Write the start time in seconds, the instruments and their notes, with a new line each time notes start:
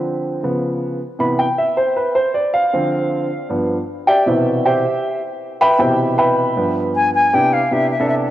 Already playing: upright piano D3 F3 C4
0.43 upright piano C#3 F3 B3
1.19 upright piano C3 E3 B3 B5
1.39 upright piano G5
1.58 upright piano E5
1.77 upright piano C5
1.96 upright piano B4
2.15 upright piano C5
2.34 upright piano D5
2.53 upright piano F5
2.73 upright piano D3 F3 C4
3.49 upright piano G2 F3 B3
4.07 upright piano G4 D5 E5 G5
4.26 upright piano B2 C3 E3 E4 B4 C5 E5
4.65 upright piano G4 C5 E5 G5
5.61 upright piano B4 E5 G5 B5
5.78 upright piano B2 C3 E3 G4 C5 E5 G5
6.18 upright piano B4 E5 G5 B5
6.56 upright piano G2 F3 B3
6.96 flute G#5
7.15 flute G#5
7.33 upright piano C3 B3 D4 E4 G4, flute G5
7.53 flute F5
7.71 upright piano C3 B3 D4 E4 G4, flute E5
7.91 flute E5
8.00 upright piano C3 B3 D4 E4 A4
8.09 flute E5